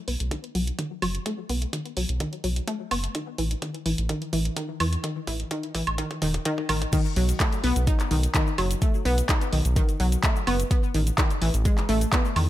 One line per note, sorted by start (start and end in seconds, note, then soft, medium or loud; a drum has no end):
0.08 0.16 B1 medium
0.08 0.14 B3 medium
0.08 open hi-hat loud
0.20 0.36 B1 loud
0.20 closed hi-hat soft
0.31 0.35 D#3 medium
0.31 kick loud
0.31 closed hi-hat medium
0.44 closed hi-hat soft
0.55 0.71 B1 medium
0.55 0.61 F#3 medium
0.55 open hi-hat loud
0.67 closed hi-hat medium
0.79 0.85 D#3 medium
0.79 kick loud
0.79 closed hi-hat medium
1.02 1.19 F#1 medium
1.02 1.06 F#3 medium
1.02 open hi-hat loud
1.02 high woodblock medium
1.15 closed hi-hat medium
1.26 1.32 A3 loud
1.26 kick loud
1.26 closed hi-hat medium
1.49 1.66 B1 loud
1.49 1.56 B3 medium
1.49 open hi-hat loud
1.62 closed hi-hat medium
1.73 1.77 D#3 medium
1.73 kick loud
1.73 closed hi-hat medium
1.86 closed hi-hat soft
1.97 2.05 B1 medium
1.97 2.03 F#3 medium
1.97 open hi-hat loud
2.09 2.25 B1 loud
2.09 closed hi-hat soft
2.20 2.27 D#3 medium
2.20 kick loud
2.20 closed hi-hat medium
2.33 closed hi-hat soft
2.44 2.60 B1 medium
2.44 2.48 F#3 medium
2.44 open hi-hat loud
2.56 closed hi-hat medium
2.67 2.74 A3 loud
2.67 kick loud
2.67 closed hi-hat medium
2.91 3.08 F#1 medium
2.91 2.98 B3 medium
2.91 open hi-hat loud
2.91 high woodblock medium
3.04 closed hi-hat medium
3.15 3.19 D#3 medium
3.15 kick loud
3.15 closed hi-hat medium
3.38 3.55 A1 loud
3.38 3.45 E3 medium
3.38 open hi-hat loud
3.51 closed hi-hat soft
3.62 3.68 D#3 medium
3.62 kick loud
3.62 closed hi-hat medium
3.75 closed hi-hat soft
3.86 3.94 A1 medium
3.86 3.90 E3 medium
3.86 open hi-hat loud
3.98 4.14 A1 loud
3.98 closed hi-hat soft
4.09 4.13 D#3 medium
4.09 kick loud
4.09 closed hi-hat medium
4.22 closed hi-hat soft
4.33 4.49 A1 medium
4.33 4.39 E3 medium
4.33 open hi-hat loud
4.45 closed hi-hat soft
4.56 4.63 D#3 medium
4.56 kick loud
4.56 closed hi-hat medium
4.80 4.97 E2 medium
4.80 4.84 E3 medium
4.80 open hi-hat loud
4.80 high woodblock medium
4.93 closed hi-hat medium
5.04 5.08 D#3 medium
5.04 kick loud
5.04 closed hi-hat medium
5.27 5.44 A1 loud
5.27 5.34 E3 medium
5.27 kick loud
5.27 open hi-hat loud
5.40 closed hi-hat soft
5.51 5.55 D#3 medium
5.51 kick loud
5.51 closed hi-hat medium
5.63 closed hi-hat soft
5.75 5.83 A1 medium
5.75 5.81 E3 medium
5.75 kick loud
5.75 open hi-hat loud
5.87 6.03 A1 loud
5.87 closed hi-hat soft
5.87 high woodblock medium
5.98 6.02 D#3 medium
5.98 kick loud
5.98 closed hi-hat medium
6.11 kick medium
6.11 closed hi-hat soft
6.22 6.38 E1 medium
6.22 6.26 D#3 medium
6.22 kick loud
6.22 open hi-hat loud
6.34 kick medium
6.34 closed hi-hat medium
6.45 6.49 D#3 medium
6.45 kick loud
6.45 closed hi-hat medium
6.58 kick medium
6.69 6.86 A1 medium
6.69 6.73 D#3 medium
6.69 kick loud
6.69 open hi-hat loud
6.69 high woodblock medium
6.82 kick medium
6.82 closed hi-hat medium
6.93 6.97 D#3 loud
6.93 kick loud
6.93 closed hi-hat medium
6.93 crash loud
6.93 shaker medium
7.05 shaker soft
7.16 7.33 B1 loud
7.16 7.23 F#3 medium
7.16 open hi-hat loud
7.29 closed hi-hat medium
7.29 shaker medium
7.40 7.50 A3 medium
7.40 kick loud
7.40 clap loud
7.40 closed hi-hat medium
7.40 shaker medium
7.53 closed hi-hat soft
7.53 shaker soft
7.64 7.72 B1 medium
7.64 7.73 B3 loud
7.64 open hi-hat loud
7.76 7.92 B1 loud
7.76 closed hi-hat medium
7.76 shaker medium
7.87 7.94 D#4 medium
7.87 kick loud
7.87 closed hi-hat medium
7.87 shaker medium
8.00 clap soft
8.00 closed hi-hat soft
8.00 shaker soft
8.11 8.27 B1 medium
8.11 8.15 D#3 medium
8.11 open hi-hat loud
8.23 closed hi-hat medium
8.23 shaker medium
8.35 8.38 D#3 loud
8.35 kick loud
8.35 clap loud
8.35 closed hi-hat medium
8.35 shaker medium
8.47 shaker soft
8.58 8.75 F#1 medium
8.58 8.65 F#3 medium
8.58 open hi-hat loud
8.58 high woodblock medium
8.71 closed hi-hat medium
8.71 shaker medium
8.82 8.91 A3 medium
8.82 kick loud
8.82 closed hi-hat medium
8.82 shaker medium
8.94 shaker soft
9.05 9.22 B1 loud
9.05 9.15 B3 loud
9.05 open hi-hat loud
9.18 closed hi-hat medium
9.18 shaker medium
9.29 9.35 D#4 medium
9.29 kick loud
9.29 clap loud
9.29 closed hi-hat medium
9.29 shaker medium
9.41 closed hi-hat soft
9.41 shaker soft
9.53 9.61 B1 medium
9.53 9.56 D#3 medium
9.53 open hi-hat loud
9.65 9.81 B1 loud
9.65 closed hi-hat medium
9.65 shaker medium
9.76 9.80 D#3 loud
9.76 kick loud
9.76 closed hi-hat medium
9.76 shaker medium
9.89 closed hi-hat soft
9.89 shaker soft
10.00 10.16 B1 medium
10.00 10.06 F#3 medium
10.00 open hi-hat loud
10.12 closed hi-hat medium
10.12 shaker medium
10.23 10.33 A3 medium
10.23 kick loud
10.23 clap loud
10.23 closed hi-hat medium
10.23 shaker medium
10.36 shaker soft
10.47 10.64 F#1 medium
10.47 10.57 B3 loud
10.47 open hi-hat loud
10.47 high woodblock medium
10.60 closed hi-hat medium
10.60 shaker medium
10.71 10.77 B3 medium
10.71 kick loud
10.71 closed hi-hat medium
10.71 shaker medium
10.83 shaker soft
10.94 11.11 A1 loud
10.94 10.98 D#3 medium
10.94 open hi-hat loud
11.07 closed hi-hat medium
11.07 shaker medium
11.18 11.22 D#3 loud
11.18 kick loud
11.18 clap loud
11.18 closed hi-hat medium
11.18 shaker medium
11.30 closed hi-hat soft
11.30 shaker soft
11.42 11.50 A1 medium
11.42 11.48 E3 medium
11.42 open hi-hat loud
11.54 11.70 A1 loud
11.54 closed hi-hat soft
11.54 shaker medium
11.65 11.75 G#3 medium
11.65 kick loud
11.65 closed hi-hat medium
11.65 shaker medium
11.78 clap soft
11.78 closed hi-hat soft
11.78 shaker soft
11.89 12.05 A1 medium
11.89 11.99 A3 loud
11.89 open hi-hat loud
12.01 closed hi-hat medium
12.01 shaker medium
12.13 12.19 B3 medium
12.13 kick loud
12.13 clap loud
12.13 closed hi-hat medium
12.13 shaker medium
12.25 shaker soft
12.36 12.49 E2 medium
12.36 12.40 D#3 medium
12.36 open hi-hat loud
12.36 high woodblock medium